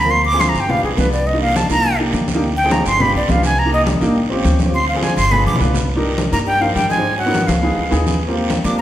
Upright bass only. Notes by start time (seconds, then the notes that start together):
Already playing: D2
0.54 G1
0.83 B1
0.98 C2
1.69 C2
2.13 D2
2.85 G1
3.14 B1
3.29 C2
4.01 A1
4.44 D2
5.17 G1
5.46 B1
5.60 C2
6.32 G2
6.75 G#2
7.48 C#2
7.77 C#2
7.92 D#2
8.64 D#2